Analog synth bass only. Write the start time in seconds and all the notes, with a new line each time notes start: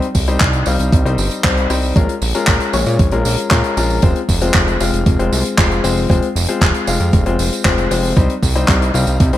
0.15 C2
0.41 C2
0.67 C2
0.79 C2
0.93 C2
1.05 C2
1.18 G1
1.44 C2
1.70 C2
1.96 A#1
2.22 A#1
2.48 A#1
2.74 A#1
2.86 A#2
2.99 A#1
3.12 A#1
3.25 A#1
3.51 A#2
3.77 A#1
4.03 F1
4.29 F1
4.55 F1
4.80 F1
4.93 F1
5.06 F1
5.19 F1
5.32 C2
5.58 F1
5.84 F1
6.10 F1
6.36 F1
6.62 F1
6.87 F1
7.00 F2
7.13 F1
7.26 F1
7.39 F1
7.65 F1
7.91 F1
8.17 C2
8.43 C2
8.68 C2
8.94 C2
9.07 C2
9.20 C2
9.33 C2